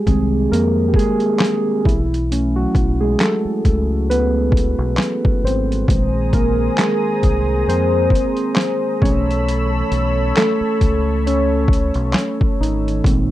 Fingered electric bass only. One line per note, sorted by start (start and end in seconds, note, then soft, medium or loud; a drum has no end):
0.07 0.46 C2 medium
0.52 0.91 F2 loud
1.86 2.65 B1 medium
2.75 3.15 B1 loud
3.45 muted fingered electric bass stroke soft
3.65 4.75 C#2 medium
4.79 4.96 B1 medium
5.44 5.83 G#1 medium
5.89 6.68 A#1 loud
7.23 7.63 C2 loud
7.68 8.07 F2 medium
9.02 9.81 B1 medium
9.91 10.31 B1 medium
10.61 muted fingered electric bass stroke soft
10.81 11.91 C#2 medium
11.95 12.13 B1 medium
12.60 13.00 G#1 medium
13.04 13.31 A#1 loud